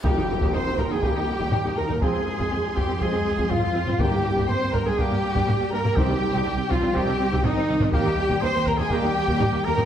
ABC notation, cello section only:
X:1
M:4/4
L:1/16
Q:1/4=122
K:Eb
V:1 name="Cello section"
G4 c2 B A G6 B2 | A6 G2 A4 F4 | G4 c2 B A G6 B2 | G6 F2 G4 E4 |
G4 c2 B A G6 B2 |]